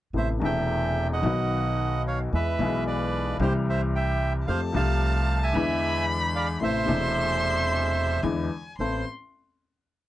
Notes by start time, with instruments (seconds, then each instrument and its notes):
0.13 upright bass A1, upright piano A1 A2 C3 A3 B3 E4, bandoneon C5
0.18 bandoneon E5
0.40 upright bass E1, upright piano E1 E2 C3 A3 B3 E4
0.44 bandoneon E5 G5
1.13 bandoneon D#5 F#5
1.22 upright bass B1, upright piano B1 B2 D#3 F#3 B3 F#4
2.07 bandoneon C#5 F5
2.32 upright bass E2, upright piano E2 E3 G#3 B3 G#4, bandoneon B4 E5
2.59 upright bass B1, upright piano B1 B2 E3 G#3 B3 G#4
2.87 bandoneon B4 D5
3.39 upright bass C2, upright piano C2 C3 E3 G3 C4 G4, bandoneon G4 C5
3.69 bandoneon C5 E5
3.95 bandoneon E5 G5
4.47 upright bass F2, upright piano F2 F3 A3 C4 G4, bandoneon C5 F5, violin A5
4.72 upright piano C2 C3 F3 A3 C4, upright bass C2, bandoneon F5 A5
4.77 upright piano G4
5.43 bandoneon E5 G#5
5.53 upright bass E2, upright piano E2 D3 E3 G#3 B3, violin B5
5.57 upright piano E4
6.36 bandoneon D5 F5
6.60 upright piano A1 A2 C3 A3 B3 E4, upright bass A1, bandoneon C5 E5, violin C6
6.86 upright piano E1 E2 B2 C3 A3 E4, upright bass E1
8.23 upright piano E2 D3 E3 G#3 B3 E4, upright bass E2, violin G#5
8.79 upright bass A1, upright piano A1 B3 C4 A4, bandoneon C5, violin C6